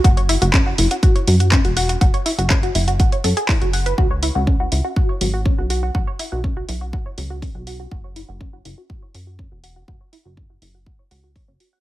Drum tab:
HH |xxoxx-oxxxoxxxox|xxoxxxoxxxoxoxox|--o---o---o---o-|--o---o---o-o-o-|
CP |----x-------x---|----x-------x---|----------------|----------------|
BD |o---o---o---o---|o---o---o---o---|o---o---o---o---|o---o---o---o---|

HH |--o---o---o---o-|--o---o---o-o-o-|
CP |----------------|----------------|
BD |o---o---o---o---|o---o---o---o---|